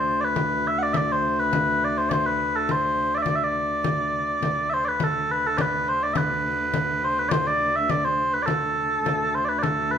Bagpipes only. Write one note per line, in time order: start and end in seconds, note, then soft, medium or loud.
0.00 0.21 C5 medium
0.21 0.67 B4 medium
0.21 0.24 D5 medium
0.67 0.78 E5 medium
0.78 0.83 F#5 medium
0.83 0.93 D5 medium
0.93 1.12 D5 medium
0.93 0.97 E5 medium
1.12 1.39 C5 medium
1.39 1.84 B4 medium
1.84 1.98 D5 medium
1.98 2.09 C5 medium
2.09 2.26 C5 medium
2.09 2.13 D5 medium
2.26 2.56 B4 medium
2.56 2.71 A4 medium
2.71 3.15 C5 medium
3.15 3.17 D5 medium
3.15 3.22 E5 medium
3.22 3.29 D5 medium
3.29 3.36 D5 medium
3.36 3.44 E5 medium
3.44 4.70 D5 medium
4.70 4.74 E5 medium
4.74 4.85 C5 medium
4.85 5.04 B4 medium
4.85 4.88 D5 medium
5.04 5.32 A4 medium
5.32 5.47 B4 medium
5.47 5.58 A4 medium
5.58 5.89 B4 medium
5.58 5.61 D5 medium
5.89 6.03 C5 medium
6.03 6.14 D5 medium
6.14 7.04 B4 medium
6.14 6.17 E5 medium
7.04 7.19 C5 medium
7.19 7.29 B4 medium
7.29 7.47 C5 medium
7.29 7.32 D5 medium
7.47 7.76 D5 medium
7.76 7.90 E5 medium
7.90 8.05 D5 medium
8.05 8.34 C5 medium
8.34 8.42 B4 medium
8.42 9.35 A4 medium
8.42 8.46 D5 medium
9.35 9.45 C5 medium
9.45 9.59 B4 medium
9.45 9.49 D5 medium
9.59 9.91 A4 medium
9.59 9.63 D5 medium
9.91 9.98 B4 medium